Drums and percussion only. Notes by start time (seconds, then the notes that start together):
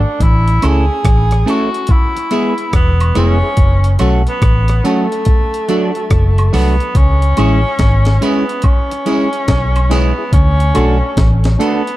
0.20 kick, closed hi-hat
0.48 closed hi-hat
0.62 closed hi-hat, tambourine, high woodblock
1.05 kick, cross-stick, closed hi-hat
1.31 cross-stick, closed hi-hat
1.47 closed hi-hat, tambourine
1.74 closed hi-hat
1.87 kick, closed hi-hat
2.17 closed hi-hat
2.31 closed hi-hat, tambourine
2.58 closed hi-hat
2.73 kick, cross-stick, closed hi-hat
3.00 closed hi-hat, high woodblock
3.15 cross-stick, closed hi-hat, tambourine
3.57 kick, closed hi-hat
3.84 closed hi-hat
3.99 closed hi-hat, tambourine, high woodblock
4.27 closed hi-hat
4.42 kick, cross-stick, closed hi-hat
4.68 cross-stick, closed hi-hat
4.85 closed hi-hat, tambourine
5.12 closed hi-hat
5.25 kick, closed hi-hat
5.54 closed hi-hat
5.69 closed hi-hat, tambourine
5.95 closed hi-hat
6.11 kick, cross-stick, closed hi-hat
6.38 closed hi-hat, high woodblock
6.53 cross-stick, open hi-hat, tambourine
6.80 closed hi-hat
6.95 kick, closed hi-hat
7.22 closed hi-hat
7.37 closed hi-hat, tambourine, high woodblock
7.79 kick, snare, closed hi-hat
8.05 snare, closed hi-hat
8.22 closed hi-hat, tambourine
8.49 closed hi-hat
8.62 kick, closed hi-hat, high woodblock
8.91 closed hi-hat
9.06 closed hi-hat, tambourine
9.33 closed hi-hat
9.48 kick, snare, closed hi-hat
9.76 closed hi-hat, high woodblock
9.91 snare, closed hi-hat, tambourine
10.33 kick, closed hi-hat
10.60 closed hi-hat
10.75 closed hi-hat, tambourine, high woodblock
11.17 kick, snare, closed hi-hat
11.44 snare, closed hi-hat
11.60 closed hi-hat, tambourine
11.87 closed hi-hat